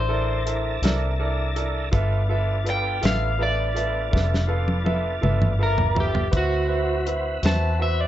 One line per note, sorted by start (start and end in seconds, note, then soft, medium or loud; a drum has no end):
0.00 0.80 A1 medium
0.00 1.89 D4 medium
0.00 1.89 E4 medium
0.00 1.89 A#4 medium
0.00 1.90 C5 medium
0.00 1.89 A5 medium
0.09 0.37 E4 medium
0.09 0.37 A4 medium
0.09 0.37 A#4 soft
0.09 0.38 D5 medium
0.45 0.74 E4 medium
0.45 0.74 A4 soft
0.45 0.74 A#4 soft
0.45 0.75 E5 medium
0.45 closed hi-hat medium
0.82 1.89 C2 medium
0.82 1.11 E4 medium
0.82 1.11 A4 medium
0.82 1.11 A#4 medium
0.82 1.12 D5 medium
0.82 snare medium
0.82 closed hi-hat medium
1.19 1.47 E4 medium
1.19 1.47 A4 medium
1.19 1.47 A#4 medium
1.19 1.48 D5 medium
1.55 1.84 E4 medium
1.55 1.84 A4 medium
1.55 1.84 A#4 medium
1.55 1.85 D5 medium
1.55 closed hi-hat medium
1.91 3.00 G1 medium
1.91 6.28 B3 medium
1.91 6.28 D4 medium
1.91 2.20 F4 medium
1.91 6.28 F4 medium
1.91 2.20 A4 medium
1.91 2.20 B4 medium
1.91 2.21 E5 medium
1.91 6.28 A5 medium
1.91 kick loud
1.91 closed hi-hat medium
2.29 2.57 F4 medium
2.29 2.57 A4 medium
2.29 2.57 B4 medium
2.29 2.58 E5 medium
2.64 2.93 F4 medium
2.64 2.93 A4 soft
2.64 2.94 B4 soft
2.64 2.94 F5 medium
2.64 closed hi-hat medium
2.70 3.04 G5 medium
3.01 4.10 A1 medium
3.01 3.30 F4 medium
3.01 3.30 A4 soft
3.01 3.30 B4 soft
3.01 3.31 E5 medium
3.01 closed hi-hat medium
3.05 3.40 F5 medium
3.05 snare loud
3.38 3.67 F4 medium
3.38 3.67 A4 soft
3.38 3.67 B4 soft
3.38 3.67 E5 medium
3.43 5.57 D5 loud
3.74 4.03 F4 medium
3.74 4.03 A4 medium
3.74 4.04 B4 soft
3.74 4.04 E5 medium
3.74 closed hi-hat medium
4.11 5.20 F1 medium
4.11 4.40 F4 medium
4.11 4.40 A4 soft
4.11 4.40 B4 soft
4.11 4.40 E5 medium
4.11 kick medium
4.16 snare medium
4.34 snare medium
4.47 4.76 F4 medium
4.47 4.77 A4 medium
4.47 4.77 B4 medium
4.47 4.77 F5 medium
4.68 high tom medium
4.84 5.13 F4 medium
4.84 5.13 A4 medium
4.84 5.13 B4 medium
4.84 5.14 E5 medium
4.84 high tom medium
5.21 6.29 G1 medium
5.21 5.50 F4 medium
5.21 5.50 A4 medium
5.21 5.50 B4 medium
5.21 5.50 E5 medium
5.21 mid tom medium
5.42 mid tom medium
5.59 5.87 F4 soft
5.59 5.87 A4 soft
5.59 5.87 B4 soft
5.59 5.87 E5 medium
5.63 5.97 A#4 medium
5.78 floor tom medium
5.95 6.23 F4 soft
5.95 6.23 A4 soft
5.95 6.23 B4 soft
5.95 6.24 E5 medium
5.95 floor tom medium
6.00 6.34 G4 medium
6.15 floor tom medium
6.31 7.39 D2 medium
6.31 8.07 C4 medium
6.31 8.07 E4 medium
6.31 6.59 F#4 medium
6.31 8.07 F#4 medium
6.31 6.59 B4 medium
6.31 8.07 B4 medium
6.31 6.60 C5 medium
6.31 6.60 E5 medium
6.31 kick loud
6.31 closed hi-hat medium
6.37 7.06 F#4 medium
6.68 6.96 F#4 medium
6.68 6.96 B4 medium
6.68 6.96 C5 soft
6.68 6.97 E5 medium
7.06 7.33 F#4 soft
7.06 7.33 B4 soft
7.06 7.34 C5 soft
7.06 7.34 E5 medium
7.06 closed hi-hat medium
7.42 8.07 E2 medium
7.42 7.70 F#4 medium
7.42 7.70 B4 soft
7.42 7.70 C5 soft
7.42 7.71 E5 medium
7.42 7.80 A5 medium
7.42 snare loud
7.42 closed hi-hat medium
7.79 8.06 F#4 medium
7.79 8.07 B4 soft
7.79 8.07 C5 soft
7.79 8.07 E5 medium
7.79 8.01 E5 medium
8.01 8.07 D5 medium